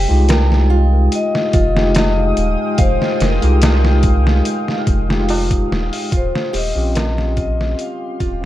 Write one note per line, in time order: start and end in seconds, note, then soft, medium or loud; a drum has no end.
0.00 6.08 G#3 medium
0.00 0.25 G4 loud
0.00 8.45 F5 medium
0.00 0.31 G5 loud
0.00 6.09 G5 medium
0.00 6.09 D#6 medium
0.08 1.09 C2 medium
0.08 1.70 G#3 medium
0.08 1.70 D#4 medium
0.08 1.71 F4 medium
0.08 1.71 G4 medium
0.29 0.67 A#4 medium
0.29 1.16 G5 loud
0.29 snare loud
0.29 closed hi-hat medium
0.29 tabla na medium
0.52 snare soft
0.70 1.50 F4 medium
1.12 2.85 D#5 loud
1.12 closed hi-hat medium
1.35 snare soft
1.53 2.33 F1 loud
1.53 2.75 F4 medium
1.53 kick loud
1.53 closed hi-hat medium
1.75 3.37 G#3 medium
1.75 3.37 D#4 medium
1.75 3.37 F4 medium
1.75 3.38 G4 medium
1.75 snare medium
1.95 snare loud
1.95 closed hi-hat medium
1.95 tabla na medium
2.37 2.56 D#1 loud
2.37 closed hi-hat medium
2.78 2.98 F1 loud
2.78 3.22 C5 medium
2.78 4.41 F5 medium
2.78 kick loud
2.78 closed hi-hat medium
3.02 snare soft
3.20 3.40 F1 loud
3.20 5.67 A#4 medium
3.20 snare medium
3.20 closed hi-hat medium
3.42 4.42 C2 loud
3.42 5.03 G#3 medium
3.42 5.04 D#4 medium
3.42 5.04 F4 medium
3.42 5.04 G4 loud
3.42 closed hi-hat soft
3.62 snare loud
3.62 closed hi-hat medium
3.62 tabla na medium
3.85 snare soft
4.03 kick loud
4.03 closed hi-hat medium
4.27 snare medium
4.45 closed hi-hat medium
4.68 snare soft
4.87 5.67 F1 loud
4.87 kick loud
4.87 closed hi-hat medium
5.08 6.09 G#3 medium
5.08 6.10 D#4 medium
5.08 6.10 F4 medium
5.08 6.11 G4 medium
5.08 snare medium
5.29 5.68 F4 medium
5.29 open hi-hat medium
5.29 tabla na medium
5.51 kick medium
5.51 closed hi-hat medium
5.71 5.90 D#1 loud
5.71 snare medium
5.93 open hi-hat medium
6.11 6.31 D#1 loud
6.11 6.49 F4 medium
6.11 8.45 G4 medium
6.11 8.45 C6 medium
6.11 kick loud
6.11 closed hi-hat medium
6.17 6.57 C5 loud
6.35 snare medium
6.53 6.73 D#1 medium
6.53 6.91 G4 loud
6.53 7.40 D#5 loud
6.53 open hi-hat medium
6.75 7.75 A#1 loud
6.75 8.37 C4 medium
6.75 8.37 C#4 medium
6.75 8.38 F4 medium
6.75 8.38 G4 loud
6.95 7.33 A#4 medium
6.95 snare loud
6.95 closed hi-hat medium
6.95 tabla na medium
7.18 snare soft
7.37 8.16 F4 medium
7.37 kick loud
7.37 closed hi-hat medium
7.41 7.82 D#5 loud
7.61 snare soft
7.79 8.45 F5 loud
7.79 closed hi-hat medium
8.20 8.45 D#1 loud
8.20 8.45 F4 medium
8.20 kick loud
8.20 closed hi-hat medium
8.41 8.45 C4 medium